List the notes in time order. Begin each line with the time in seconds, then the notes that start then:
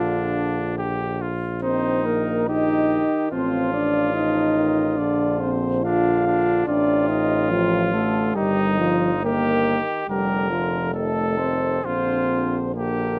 Already playing: A#1 D3 D4 F4 F5
0.79 G4
1.21 F4
1.62 D#3 C4 D#4 C5
2.04 A#3 A#4
2.48 D#3 D#4 G4 D#5
3.32 A1 F3 C4 F4 C5
3.73 D4 D5
4.14 F3 D#4 D#5
4.57 D#3
4.97 A#1 D3 D4 D5
5.40 C4 C5
5.83 D3 D4 F4 F5
6.27 D4
6.67 A1 C3 D4 F4 D5
7.09 D#4 D#5
7.51 C3 F3 F4
7.93 D3 A3 A4
8.35 G1 D#3 G3 D#4 G4
8.79 F3 F4
9.23 D#3 A#3 G4 A#4
10.07 F1 D3 G3 G4 A#4
10.51 F3 F4
10.94 D#3 A3 A4
11.38 C4 C5
11.84 A#1 D3 C4 F4 C5
12.75 D3 A#3 G4 A#4